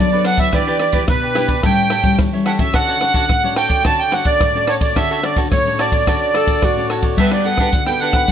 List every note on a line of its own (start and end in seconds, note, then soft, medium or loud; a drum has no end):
0.00 0.51 F#3 medium
0.00 0.10 D4 medium
0.00 0.11 A4 medium
0.00 0.11 B4 medium
0.00 0.11 D5 medium
0.00 0.24 D5 loud
0.12 0.50 D4 medium
0.12 0.24 A4 soft
0.12 0.50 A4 medium
0.12 0.25 B4 soft
0.12 0.50 C#5 medium
0.12 0.25 D5 medium
0.25 0.38 D4 medium
0.25 0.38 A4 medium
0.25 0.38 B4 medium
0.25 0.37 D5 medium
0.25 0.39 F#5 loud
0.25 cross-stick medium
0.25 ride medium
0.38 0.52 A4 soft
0.38 0.52 B4 soft
0.38 0.52 D5 soft
0.38 0.54 E5 medium
0.38 kick medium
0.38 ride medium
0.52 1.06 E3 medium
0.52 0.91 D4 medium
0.52 0.66 E4 medium
0.52 0.66 G4 medium
0.52 0.91 G4 medium
0.52 0.66 B4 medium
0.52 0.91 B4 medium
0.52 0.66 D5 medium
0.52 1.05 D5 medium
0.52 kick medium
0.52 cross-stick medium
0.52 ride soft
0.67 0.76 E4 medium
0.67 0.76 G4 medium
0.67 0.77 B4 medium
0.67 0.77 D5 medium
0.79 0.92 E4 medium
0.79 0.92 G4 soft
0.79 0.92 B4 medium
0.79 0.92 D5 medium
0.79 cross-stick medium
0.79 ride soft
0.92 1.32 D4 medium
0.92 1.03 E4 medium
0.92 1.03 G4 medium
0.92 1.32 G4 medium
0.92 1.03 B4 medium
0.92 1.32 B4 medium
0.92 1.03 D5 medium
0.92 kick medium
0.92 ride medium
1.08 1.62 B2 medium
1.08 1.61 B4 medium
1.08 kick medium
1.08 cross-stick medium
1.08 ride soft
1.22 1.34 G4 soft
1.22 1.35 B4 soft
1.22 1.35 D5 soft
1.35 1.52 D4 medium
1.35 1.48 E4 medium
1.35 1.48 G4 medium
1.35 1.53 G4 medium
1.35 1.48 B4 medium
1.35 1.53 B4 medium
1.35 1.46 D5 medium
1.35 cross-stick medium
1.35 ride medium
1.48 1.62 G4 soft
1.48 1.62 B4 medium
1.48 1.62 D5 medium
1.48 kick medium
1.48 ride medium
1.63 2.17 A2 medium
1.63 1.91 G3 medium
1.63 1.91 C#4 medium
1.63 1.91 E4 medium
1.63 1.89 G4 medium
1.63 1.89 A4 medium
1.63 1.90 C#5 medium
1.63 1.90 E5 medium
1.63 2.16 G5 loud
1.63 kick medium
1.63 cross-stick medium
1.63 ride medium
1.90 2.31 G4 soft
1.90 2.32 A4 medium
1.90 2.32 C#5 medium
1.90 2.32 E5 medium
1.90 cross-stick medium
1.90 ride soft
2.03 2.28 G3 medium
2.03 2.28 C#4 medium
2.03 2.29 E4 medium
2.03 kick medium
2.03 ride medium
2.19 2.72 E3 medium
2.19 kick medium
2.19 cross-stick medium
2.19 ride soft
2.33 2.57 G3 medium
2.33 2.57 C#4 medium
2.33 2.57 E4 medium
2.33 2.45 A4 soft
2.33 2.46 C#5 soft
2.33 2.46 E5 medium
2.45 2.59 G4 medium
2.45 2.59 A4 medium
2.45 2.58 C#5 medium
2.45 2.58 E5 medium
2.45 2.52 F#5 medium
2.45 cross-stick medium
2.45 ride soft
2.59 3.01 C#4 medium
2.59 3.01 F#4 medium
2.59 2.73 A4 soft
2.59 3.01 A4 medium
2.59 2.73 C#5 soft
2.59 2.73 E5 soft
2.59 2.74 E5 medium
2.59 kick medium
2.59 ride medium
2.74 3.27 D3 medium
2.74 2.86 F#4 medium
2.74 2.87 A4 medium
2.74 2.88 C#5 medium
2.74 2.88 D5 medium
2.74 3.54 F#5 loud
2.74 kick medium
2.74 cross-stick medium
2.74 ride soft
2.88 2.97 F#4 medium
2.88 2.98 A4 medium
2.88 2.98 C#5 medium
2.88 2.98 D5 medium
3.01 3.40 C#4 medium
3.01 3.13 F#4 soft
3.01 3.40 F#4 medium
3.01 3.13 A4 soft
3.01 3.40 A4 medium
3.01 3.14 C#5 soft
3.01 3.14 D5 medium
3.01 cross-stick medium
3.01 ride soft
3.14 3.24 F#4 medium
3.14 3.24 A4 medium
3.14 3.25 C#5 medium
3.14 3.25 D5 loud
3.14 kick medium
3.14 ride soft
3.29 3.82 A2 medium
3.29 kick medium
3.29 cross-stick medium
3.29 ride soft
3.43 3.81 C#4 medium
3.43 3.81 F#4 medium
3.43 3.82 A4 medium
3.43 3.55 A4 soft
3.43 3.56 C#5 soft
3.43 3.56 D5 soft
3.56 3.70 F#4 medium
3.56 3.69 A4 medium
3.56 3.68 C#5 medium
3.56 3.68 D5 medium
3.56 3.83 G5 loud
3.56 cross-stick medium
3.56 ride medium
3.69 3.83 A4 soft
3.69 3.84 C#5 soft
3.69 3.83 D5 medium
3.69 kick medium
3.69 ride soft
3.84 4.38 D3 medium
3.84 4.02 C#4 medium
3.84 4.11 F#4 medium
3.84 4.02 F#4 medium
3.84 4.11 A4 medium
3.84 4.02 A4 medium
3.84 4.12 C#5 medium
3.84 4.12 D5 medium
3.84 4.00 A5 loud
3.84 kick medium
3.84 cross-stick medium
3.84 ride medium
3.99 4.14 G5 loud
4.12 4.39 C#4 medium
4.12 4.53 F#4 medium
4.12 4.39 F#4 medium
4.12 4.53 A4 soft
4.12 4.39 A4 medium
4.12 4.54 C#5 medium
4.12 4.54 D5 medium
4.12 4.27 F#5 medium
4.12 cross-stick medium
4.12 ride medium
4.25 4.70 D5 medium
4.25 kick medium
4.25 ride medium
4.41 4.94 A2 medium
4.41 kick medium
4.41 cross-stick medium
4.41 ride medium
4.55 4.92 C#4 medium
4.55 4.92 F#4 medium
4.55 4.93 A4 medium
4.55 4.67 A4 soft
4.55 4.67 C#5 soft
4.55 4.68 D5 soft
4.67 4.81 F#4 medium
4.67 4.81 A4 medium
4.67 4.81 C#5 medium
4.67 4.75 C#5 medium
4.67 4.80 D5 medium
4.67 cross-stick medium
4.67 ride soft
4.81 4.95 A4 soft
4.81 4.95 C#5 soft
4.81 4.95 D5 medium
4.81 4.96 D5 medium
4.81 kick medium
4.81 ride medium
4.96 5.49 D3 medium
4.96 5.19 C#4 medium
4.96 5.09 F#4 medium
4.96 5.20 F#4 medium
4.96 5.09 A4 medium
4.96 5.20 A4 medium
4.96 5.09 C#5 medium
4.96 5.10 D5 medium
4.96 5.25 E5 medium
4.96 kick medium
4.96 cross-stick medium
4.96 ride soft
5.11 5.20 F#4 medium
5.11 5.20 A4 medium
5.11 5.20 C#5 medium
5.11 5.20 D5 medium
5.23 5.61 C#4 medium
5.23 5.61 F#4 medium
5.23 5.36 F#4 medium
5.23 5.61 A4 medium
5.23 5.36 A4 medium
5.23 5.37 C#5 medium
5.23 5.37 D5 medium
5.23 5.37 D5 soft
5.23 cross-stick medium
5.23 ride medium
5.36 5.47 F#4 medium
5.36 5.47 A4 medium
5.36 5.47 C#5 medium
5.36 5.47 D5 loud
5.36 kick medium
5.36 ride soft
5.51 6.04 A2 medium
5.51 5.80 C#5 medium
5.51 kick medium
5.51 cross-stick medium
5.51 ride soft
5.65 6.03 C#4 medium
5.65 6.03 F#4 medium
5.65 6.03 A4 medium
5.65 5.78 A4 soft
5.65 5.79 C#5 soft
5.65 5.79 D5 soft
5.79 5.92 F#4 medium
5.79 5.92 A4 medium
5.79 5.92 C#5 medium
5.79 6.86 D5 medium
5.79 5.91 D5 medium
5.79 cross-stick medium
5.79 ride medium
5.92 6.07 A4 soft
5.92 6.06 C#5 medium
5.92 6.06 D5 medium
5.92 kick medium
5.92 ride medium
6.07 6.60 D3 medium
6.07 6.31 C#4 medium
6.07 6.34 F#4 medium
6.07 6.31 F#4 medium
6.07 6.34 A4 medium
6.07 6.31 A4 medium
6.07 6.34 C#5 medium
6.07 6.35 D5 medium
6.07 kick medium
6.07 cross-stick medium
6.07 ride soft
6.34 6.72 F#4 medium
6.34 6.75 F#4 soft
6.34 6.76 A4 medium
6.34 6.72 A4 medium
6.34 6.66 A4 loud
6.34 6.76 D5 medium
6.34 cross-stick medium
6.34 ride medium
6.47 kick medium
6.47 ride medium
6.62 7.16 A2 medium
6.62 7.19 F#4 medium
6.62 kick medium
6.62 cross-stick medium
6.62 ride soft
6.77 7.14 C#4 medium
6.77 7.14 F#4 medium
6.77 7.14 A4 medium
6.77 6.90 A4 soft
6.77 6.90 C#5 soft
6.77 6.89 D5 soft
6.90 7.03 F#4 medium
6.90 7.03 A4 medium
6.90 7.03 C#5 medium
6.90 7.02 D5 medium
6.90 cross-stick medium
6.90 ride soft
7.03 7.18 A4 soft
7.03 7.17 C#5 medium
7.03 7.16 D5 soft
7.03 kick medium
7.03 ride medium
7.17 7.70 G3 medium
7.17 7.41 B3 medium
7.17 7.45 D4 medium
7.17 7.41 F#4 medium
7.17 7.45 G4 medium
7.17 7.41 A4 medium
7.17 7.46 B4 medium
7.17 7.31 E5 medium
7.17 7.46 F#5 medium
7.17 kick medium
7.17 crash medium
7.32 7.46 D5 medium
7.32 cross-stick medium
7.44 7.82 B3 medium
7.44 7.59 D4 medium
7.44 7.83 F#4 medium
7.44 7.59 G4 medium
7.44 7.82 A4 medium
7.44 7.59 B4 medium
7.44 7.84 F#5 medium
7.44 7.60 F#5 medium
7.44 closed hi-hat soft
7.57 7.69 D4 medium
7.57 7.69 G4 medium
7.57 7.69 B4 medium
7.57 7.69 F#5 medium
7.57 kick medium
7.57 cross-stick medium
7.57 closed hi-hat soft
7.73 8.26 D3 medium
7.73 kick medium
7.73 closed hi-hat medium
7.86 8.25 B3 medium
7.86 8.25 F#4 medium
7.86 8.25 A4 medium
7.86 8.01 B4 soft
7.86 8.01 F#5 soft
7.86 8.00 G5 medium
7.86 cross-stick medium
7.90 8.01 G4 soft
8.00 8.14 D4 medium
8.00 8.15 G4 medium
8.00 8.15 B4 medium
8.00 8.32 F#5 loud
8.00 8.14 F#5 medium
8.00 closed hi-hat medium
8.13 8.28 G4 soft
8.13 8.28 B4 medium
8.13 8.28 F#5 medium
8.13 kick medium
8.13 cross-stick medium
8.13 closed hi-hat soft
8.28 8.32 G3 medium
8.28 8.32 B3 medium
8.28 8.32 F#4 medium
8.28 kick medium
8.28 closed hi-hat medium